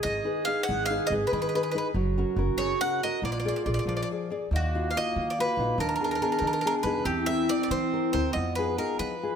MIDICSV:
0, 0, Header, 1, 5, 480
1, 0, Start_track
1, 0, Tempo, 426743
1, 764, Time_signature, 6, 3, 24, 8
1, 10524, End_track
2, 0, Start_track
2, 0, Title_t, "Mandolin"
2, 0, Program_c, 0, 25
2, 33, Note_on_c, 0, 75, 87
2, 504, Note_on_c, 0, 77, 88
2, 539, Note_off_c, 0, 75, 0
2, 708, Note_off_c, 0, 77, 0
2, 712, Note_on_c, 0, 78, 92
2, 958, Note_off_c, 0, 78, 0
2, 963, Note_on_c, 0, 77, 90
2, 1200, Note_on_c, 0, 75, 85
2, 1230, Note_off_c, 0, 77, 0
2, 1269, Note_off_c, 0, 75, 0
2, 1428, Note_on_c, 0, 71, 70
2, 1483, Note_off_c, 0, 71, 0
2, 1496, Note_on_c, 0, 71, 48
2, 1580, Note_off_c, 0, 71, 0
2, 1594, Note_on_c, 0, 71, 54
2, 1660, Note_off_c, 0, 71, 0
2, 1674, Note_on_c, 0, 71, 49
2, 1734, Note_off_c, 0, 71, 0
2, 1747, Note_on_c, 0, 71, 61
2, 1822, Note_off_c, 0, 71, 0
2, 1836, Note_on_c, 0, 71, 52
2, 1915, Note_off_c, 0, 71, 0
2, 1928, Note_on_c, 0, 71, 51
2, 1988, Note_off_c, 0, 71, 0
2, 2001, Note_on_c, 0, 71, 53
2, 2101, Note_off_c, 0, 71, 0
2, 2899, Note_on_c, 0, 73, 77
2, 3136, Note_off_c, 0, 73, 0
2, 3159, Note_on_c, 0, 78, 97
2, 3377, Note_off_c, 0, 78, 0
2, 3412, Note_on_c, 0, 75, 89
2, 3621, Note_off_c, 0, 75, 0
2, 3654, Note_on_c, 0, 74, 67
2, 3722, Note_off_c, 0, 74, 0
2, 3734, Note_on_c, 0, 74, 52
2, 3806, Note_off_c, 0, 74, 0
2, 3819, Note_on_c, 0, 74, 51
2, 3891, Note_off_c, 0, 74, 0
2, 3919, Note_on_c, 0, 74, 55
2, 3980, Note_off_c, 0, 74, 0
2, 4006, Note_on_c, 0, 74, 48
2, 4065, Note_off_c, 0, 74, 0
2, 4116, Note_on_c, 0, 74, 43
2, 4162, Note_off_c, 0, 74, 0
2, 4208, Note_on_c, 0, 74, 56
2, 4249, Note_off_c, 0, 74, 0
2, 4263, Note_on_c, 0, 74, 45
2, 4316, Note_off_c, 0, 74, 0
2, 4371, Note_on_c, 0, 74, 46
2, 4414, Note_off_c, 0, 74, 0
2, 4460, Note_on_c, 0, 74, 46
2, 4505, Note_off_c, 0, 74, 0
2, 4528, Note_on_c, 0, 74, 55
2, 4582, Note_off_c, 0, 74, 0
2, 5126, Note_on_c, 0, 66, 61
2, 5490, Note_off_c, 0, 66, 0
2, 5518, Note_on_c, 0, 77, 59
2, 5582, Note_off_c, 0, 77, 0
2, 5592, Note_on_c, 0, 75, 93
2, 5960, Note_off_c, 0, 75, 0
2, 5965, Note_on_c, 0, 74, 61
2, 6051, Note_off_c, 0, 74, 0
2, 6078, Note_on_c, 0, 71, 84
2, 6523, Note_off_c, 0, 71, 0
2, 6527, Note_on_c, 0, 70, 77
2, 6605, Note_off_c, 0, 70, 0
2, 6622, Note_on_c, 0, 70, 50
2, 6686, Note_off_c, 0, 70, 0
2, 6699, Note_on_c, 0, 70, 49
2, 6776, Note_off_c, 0, 70, 0
2, 6797, Note_on_c, 0, 70, 56
2, 6860, Note_off_c, 0, 70, 0
2, 6874, Note_on_c, 0, 70, 61
2, 6907, Note_off_c, 0, 70, 0
2, 6920, Note_on_c, 0, 70, 50
2, 6983, Note_off_c, 0, 70, 0
2, 6997, Note_on_c, 0, 70, 59
2, 7081, Note_off_c, 0, 70, 0
2, 7109, Note_on_c, 0, 70, 55
2, 7169, Note_off_c, 0, 70, 0
2, 7183, Note_on_c, 0, 70, 56
2, 7256, Note_off_c, 0, 70, 0
2, 7280, Note_on_c, 0, 70, 51
2, 7331, Note_off_c, 0, 70, 0
2, 7345, Note_on_c, 0, 70, 55
2, 7425, Note_off_c, 0, 70, 0
2, 7437, Note_on_c, 0, 70, 54
2, 7488, Note_off_c, 0, 70, 0
2, 7502, Note_on_c, 0, 70, 75
2, 7582, Note_off_c, 0, 70, 0
2, 7682, Note_on_c, 0, 71, 78
2, 7913, Note_off_c, 0, 71, 0
2, 7935, Note_on_c, 0, 67, 75
2, 8169, Note_on_c, 0, 76, 95
2, 8172, Note_off_c, 0, 67, 0
2, 8424, Note_off_c, 0, 76, 0
2, 8428, Note_on_c, 0, 74, 86
2, 8572, Note_off_c, 0, 74, 0
2, 8586, Note_on_c, 0, 74, 64
2, 8663, Note_off_c, 0, 74, 0
2, 8674, Note_on_c, 0, 72, 82
2, 9123, Note_off_c, 0, 72, 0
2, 9144, Note_on_c, 0, 72, 81
2, 9366, Note_off_c, 0, 72, 0
2, 9370, Note_on_c, 0, 75, 70
2, 9617, Note_off_c, 0, 75, 0
2, 9621, Note_on_c, 0, 71, 73
2, 9874, Note_off_c, 0, 71, 0
2, 9881, Note_on_c, 0, 70, 74
2, 10111, Note_off_c, 0, 70, 0
2, 10115, Note_on_c, 0, 71, 74
2, 10524, Note_off_c, 0, 71, 0
2, 10524, End_track
3, 0, Start_track
3, 0, Title_t, "Nylon-string guitar"
3, 0, Program_c, 1, 24
3, 0, Note_on_c, 1, 63, 47
3, 0, Note_on_c, 1, 68, 40
3, 0, Note_on_c, 1, 71, 45
3, 42, Note_on_c, 1, 51, 54
3, 187, Note_off_c, 1, 63, 0
3, 193, Note_off_c, 1, 71, 0
3, 194, Note_off_c, 1, 68, 0
3, 273, Note_on_c, 1, 63, 41
3, 282, Note_on_c, 1, 71, 42
3, 283, Note_on_c, 1, 68, 34
3, 514, Note_off_c, 1, 51, 0
3, 517, Note_off_c, 1, 63, 0
3, 522, Note_off_c, 1, 71, 0
3, 523, Note_off_c, 1, 68, 0
3, 530, Note_on_c, 1, 63, 42
3, 535, Note_on_c, 1, 68, 42
3, 538, Note_on_c, 1, 71, 45
3, 770, Note_on_c, 1, 51, 63
3, 918, Note_off_c, 1, 63, 0
3, 922, Note_off_c, 1, 68, 0
3, 922, Note_off_c, 1, 71, 0
3, 1017, Note_on_c, 1, 63, 52
3, 1021, Note_on_c, 1, 68, 41
3, 1025, Note_on_c, 1, 71, 54
3, 1237, Note_off_c, 1, 51, 0
3, 1242, Note_off_c, 1, 68, 0
3, 1244, Note_off_c, 1, 63, 0
3, 1248, Note_off_c, 1, 71, 0
3, 1257, Note_on_c, 1, 68, 44
3, 1258, Note_on_c, 1, 63, 44
3, 1262, Note_on_c, 1, 71, 51
3, 1497, Note_on_c, 1, 51, 63
3, 1637, Note_off_c, 1, 68, 0
3, 1639, Note_off_c, 1, 63, 0
3, 1641, Note_off_c, 1, 71, 0
3, 1739, Note_on_c, 1, 63, 39
3, 1743, Note_on_c, 1, 68, 36
3, 1749, Note_on_c, 1, 71, 44
3, 1948, Note_off_c, 1, 63, 0
3, 1955, Note_off_c, 1, 51, 0
3, 1955, Note_off_c, 1, 68, 0
3, 1957, Note_off_c, 1, 71, 0
3, 1962, Note_on_c, 1, 63, 49
3, 1968, Note_on_c, 1, 68, 43
3, 1974, Note_on_c, 1, 71, 57
3, 2146, Note_off_c, 1, 63, 0
3, 2150, Note_off_c, 1, 68, 0
3, 2152, Note_off_c, 1, 71, 0
3, 2198, Note_on_c, 1, 54, 58
3, 2448, Note_on_c, 1, 61, 47
3, 2452, Note_on_c, 1, 66, 44
3, 2460, Note_on_c, 1, 70, 55
3, 2662, Note_off_c, 1, 54, 0
3, 2662, Note_off_c, 1, 61, 0
3, 2667, Note_off_c, 1, 66, 0
3, 2670, Note_off_c, 1, 70, 0
3, 2675, Note_on_c, 1, 61, 52
3, 2680, Note_on_c, 1, 66, 42
3, 2686, Note_on_c, 1, 70, 49
3, 2915, Note_on_c, 1, 49, 63
3, 3062, Note_off_c, 1, 61, 0
3, 3066, Note_off_c, 1, 66, 0
3, 3067, Note_off_c, 1, 70, 0
3, 3160, Note_on_c, 1, 61, 44
3, 3166, Note_on_c, 1, 66, 35
3, 3169, Note_on_c, 1, 70, 50
3, 3382, Note_off_c, 1, 49, 0
3, 3403, Note_off_c, 1, 61, 0
3, 3403, Note_off_c, 1, 66, 0
3, 3413, Note_off_c, 1, 70, 0
3, 3416, Note_on_c, 1, 61, 49
3, 3418, Note_on_c, 1, 66, 39
3, 3426, Note_on_c, 1, 70, 52
3, 3594, Note_off_c, 1, 61, 0
3, 3595, Note_off_c, 1, 66, 0
3, 3600, Note_off_c, 1, 70, 0
3, 3634, Note_on_c, 1, 58, 62
3, 3881, Note_on_c, 1, 68, 47
3, 3888, Note_on_c, 1, 70, 44
3, 3888, Note_on_c, 1, 74, 46
3, 4105, Note_off_c, 1, 58, 0
3, 4105, Note_off_c, 1, 74, 0
3, 4106, Note_off_c, 1, 68, 0
3, 4110, Note_off_c, 1, 70, 0
3, 4119, Note_on_c, 1, 68, 46
3, 4122, Note_on_c, 1, 74, 52
3, 4123, Note_on_c, 1, 70, 46
3, 4350, Note_on_c, 1, 53, 62
3, 4511, Note_off_c, 1, 74, 0
3, 4512, Note_off_c, 1, 68, 0
3, 4514, Note_off_c, 1, 70, 0
3, 4626, Note_on_c, 1, 68, 35
3, 4631, Note_on_c, 1, 70, 34
3, 4633, Note_on_c, 1, 74, 43
3, 4827, Note_off_c, 1, 68, 0
3, 4829, Note_off_c, 1, 53, 0
3, 4837, Note_off_c, 1, 70, 0
3, 4837, Note_off_c, 1, 74, 0
3, 4841, Note_on_c, 1, 68, 43
3, 4850, Note_on_c, 1, 70, 41
3, 4854, Note_on_c, 1, 74, 51
3, 5032, Note_off_c, 1, 68, 0
3, 5038, Note_off_c, 1, 70, 0
3, 5038, Note_off_c, 1, 74, 0
3, 5090, Note_on_c, 1, 51, 64
3, 5339, Note_on_c, 1, 63, 42
3, 5343, Note_on_c, 1, 66, 54
3, 5352, Note_on_c, 1, 65, 41
3, 5561, Note_off_c, 1, 51, 0
3, 5570, Note_off_c, 1, 63, 0
3, 5570, Note_off_c, 1, 66, 0
3, 5572, Note_off_c, 1, 65, 0
3, 5580, Note_on_c, 1, 63, 42
3, 5585, Note_on_c, 1, 66, 47
3, 5593, Note_on_c, 1, 65, 43
3, 5804, Note_on_c, 1, 58, 54
3, 5967, Note_off_c, 1, 63, 0
3, 5967, Note_off_c, 1, 66, 0
3, 5968, Note_off_c, 1, 65, 0
3, 6055, Note_on_c, 1, 63, 38
3, 6061, Note_on_c, 1, 65, 32
3, 6066, Note_on_c, 1, 66, 43
3, 6274, Note_off_c, 1, 58, 0
3, 6280, Note_off_c, 1, 63, 0
3, 6280, Note_off_c, 1, 66, 0
3, 6281, Note_off_c, 1, 65, 0
3, 6292, Note_on_c, 1, 63, 46
3, 6294, Note_on_c, 1, 66, 50
3, 6298, Note_on_c, 1, 65, 40
3, 6477, Note_off_c, 1, 63, 0
3, 6477, Note_off_c, 1, 66, 0
3, 6478, Note_off_c, 1, 65, 0
3, 6515, Note_on_c, 1, 51, 60
3, 6744, Note_off_c, 1, 51, 0
3, 6746, Note_on_c, 1, 59, 47
3, 6756, Note_on_c, 1, 51, 38
3, 6760, Note_on_c, 1, 68, 51
3, 6974, Note_off_c, 1, 59, 0
3, 6975, Note_off_c, 1, 51, 0
3, 6983, Note_off_c, 1, 68, 0
3, 6988, Note_on_c, 1, 51, 40
3, 6989, Note_on_c, 1, 59, 41
3, 6997, Note_on_c, 1, 68, 48
3, 7212, Note_off_c, 1, 51, 0
3, 7225, Note_on_c, 1, 51, 59
3, 7377, Note_off_c, 1, 59, 0
3, 7383, Note_off_c, 1, 68, 0
3, 7469, Note_off_c, 1, 51, 0
3, 7480, Note_on_c, 1, 51, 35
3, 7482, Note_on_c, 1, 59, 42
3, 7487, Note_on_c, 1, 68, 43
3, 7695, Note_off_c, 1, 59, 0
3, 7700, Note_off_c, 1, 68, 0
3, 7705, Note_on_c, 1, 63, 43
3, 7708, Note_on_c, 1, 59, 46
3, 7714, Note_on_c, 1, 68, 48
3, 7853, Note_off_c, 1, 51, 0
3, 7894, Note_off_c, 1, 63, 0
3, 7896, Note_off_c, 1, 59, 0
3, 7899, Note_off_c, 1, 68, 0
3, 7933, Note_on_c, 1, 52, 66
3, 8182, Note_on_c, 1, 60, 44
3, 8193, Note_on_c, 1, 64, 43
3, 8197, Note_on_c, 1, 70, 55
3, 8408, Note_off_c, 1, 60, 0
3, 8409, Note_off_c, 1, 52, 0
3, 8415, Note_off_c, 1, 64, 0
3, 8419, Note_off_c, 1, 70, 0
3, 8421, Note_on_c, 1, 60, 40
3, 8427, Note_on_c, 1, 64, 36
3, 8434, Note_on_c, 1, 70, 44
3, 8665, Note_on_c, 1, 52, 62
3, 8815, Note_off_c, 1, 60, 0
3, 8819, Note_off_c, 1, 64, 0
3, 8821, Note_off_c, 1, 70, 0
3, 8916, Note_on_c, 1, 60, 42
3, 8918, Note_on_c, 1, 64, 35
3, 8927, Note_on_c, 1, 70, 45
3, 9137, Note_off_c, 1, 52, 0
3, 9142, Note_off_c, 1, 60, 0
3, 9146, Note_off_c, 1, 64, 0
3, 9149, Note_off_c, 1, 70, 0
3, 9155, Note_on_c, 1, 60, 47
3, 9162, Note_on_c, 1, 70, 49
3, 9163, Note_on_c, 1, 64, 45
3, 9342, Note_off_c, 1, 60, 0
3, 9344, Note_off_c, 1, 64, 0
3, 9346, Note_off_c, 1, 70, 0
3, 9377, Note_on_c, 1, 53, 65
3, 9642, Note_on_c, 1, 65, 44
3, 9650, Note_on_c, 1, 63, 44
3, 9657, Note_on_c, 1, 68, 49
3, 9856, Note_off_c, 1, 53, 0
3, 9864, Note_off_c, 1, 63, 0
3, 9864, Note_off_c, 1, 65, 0
3, 9874, Note_off_c, 1, 68, 0
3, 9877, Note_on_c, 1, 63, 40
3, 9878, Note_on_c, 1, 65, 38
3, 9888, Note_on_c, 1, 68, 45
3, 10115, Note_on_c, 1, 53, 58
3, 10272, Note_off_c, 1, 63, 0
3, 10272, Note_off_c, 1, 65, 0
3, 10279, Note_off_c, 1, 68, 0
3, 10379, Note_on_c, 1, 63, 37
3, 10385, Note_on_c, 1, 65, 37
3, 10385, Note_on_c, 1, 68, 40
3, 10524, Note_off_c, 1, 53, 0
3, 10524, Note_off_c, 1, 63, 0
3, 10524, Note_off_c, 1, 65, 0
3, 10524, Note_off_c, 1, 68, 0
3, 10524, End_track
4, 0, Start_track
4, 0, Title_t, "Clarinet"
4, 0, Program_c, 2, 71
4, 0, Note_on_c, 2, 68, 99
4, 2151, Note_off_c, 2, 68, 0
4, 2208, Note_on_c, 2, 66, 82
4, 3590, Note_off_c, 2, 66, 0
4, 3629, Note_on_c, 2, 65, 68
4, 4801, Note_off_c, 2, 65, 0
4, 5089, Note_on_c, 2, 58, 82
4, 6513, Note_on_c, 2, 62, 103
4, 6530, Note_off_c, 2, 58, 0
4, 7924, Note_on_c, 2, 60, 94
4, 7941, Note_off_c, 2, 62, 0
4, 9365, Note_on_c, 2, 59, 72
4, 9382, Note_off_c, 2, 60, 0
4, 10297, Note_off_c, 2, 59, 0
4, 10524, End_track
5, 0, Start_track
5, 0, Title_t, "Upright bass"
5, 0, Program_c, 3, 32
5, 52, Note_on_c, 3, 32, 81
5, 213, Note_off_c, 3, 32, 0
5, 775, Note_on_c, 3, 32, 84
5, 1086, Note_off_c, 3, 32, 0
5, 1241, Note_on_c, 3, 32, 85
5, 1394, Note_off_c, 3, 32, 0
5, 1488, Note_on_c, 3, 32, 73
5, 1647, Note_off_c, 3, 32, 0
5, 2186, Note_on_c, 3, 30, 88
5, 2501, Note_off_c, 3, 30, 0
5, 2659, Note_on_c, 3, 30, 89
5, 2815, Note_off_c, 3, 30, 0
5, 2890, Note_on_c, 3, 30, 72
5, 3058, Note_off_c, 3, 30, 0
5, 3623, Note_on_c, 3, 34, 71
5, 3942, Note_off_c, 3, 34, 0
5, 4114, Note_on_c, 3, 34, 76
5, 4269, Note_off_c, 3, 34, 0
5, 4336, Note_on_c, 3, 34, 70
5, 4508, Note_off_c, 3, 34, 0
5, 5073, Note_on_c, 3, 39, 82
5, 5547, Note_off_c, 3, 39, 0
5, 5803, Note_on_c, 3, 51, 81
5, 6119, Note_off_c, 3, 51, 0
5, 6268, Note_on_c, 3, 34, 74
5, 6426, Note_off_c, 3, 34, 0
5, 6501, Note_on_c, 3, 39, 91
5, 6970, Note_off_c, 3, 39, 0
5, 7216, Note_on_c, 3, 51, 83
5, 7534, Note_off_c, 3, 51, 0
5, 7695, Note_on_c, 3, 42, 81
5, 7852, Note_off_c, 3, 42, 0
5, 7932, Note_on_c, 3, 40, 88
5, 8404, Note_off_c, 3, 40, 0
5, 8669, Note_on_c, 3, 52, 82
5, 8985, Note_off_c, 3, 52, 0
5, 9156, Note_on_c, 3, 38, 80
5, 9307, Note_off_c, 3, 38, 0
5, 9402, Note_on_c, 3, 41, 83
5, 9870, Note_off_c, 3, 41, 0
5, 10117, Note_on_c, 3, 53, 70
5, 10438, Note_off_c, 3, 53, 0
5, 10524, End_track
0, 0, End_of_file